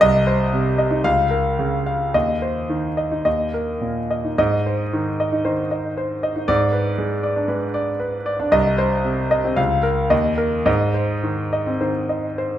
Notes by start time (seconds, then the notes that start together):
0.01 C2 D#5
0.27 C5
0.53 C3
0.78 D#5
0.91 D#4
1.04 C#2 F5
1.31 A#4
1.59 C#3
1.86 F5
2.14 D#2 D#5
2.42 C5
2.70 D#3
2.97 D#5
3.11 D#4
3.25 D#2 D#5
3.54 A#4
3.81 A#2
4.11 D#5
4.25 D#4
4.38 G#2 D#5
4.66 C5
4.93 D#3
5.20 D#5
5.32 D#4
5.45 D#3 C5
5.71 D#5
5.97 C5
6.23 D#5
6.36 D#4
6.48 G#2 D5
6.72 B4
6.98 G#3
7.23 D5
7.36 D4
7.48 G#3 B4
7.74 D5
8.00 B4
8.26 D5
8.40 D4
8.52 C2 D#5
8.78 C5
9.04 C3
9.31 D#5
9.44 C4
9.56 C#2 F5
9.83 A#4
10.10 D#2 D#5
10.38 A#4
10.66 G#2 D#5
10.94 C5
11.23 D#3
11.53 D#5
11.67 C4
11.81 D#3 C5
12.09 D#5
12.38 C5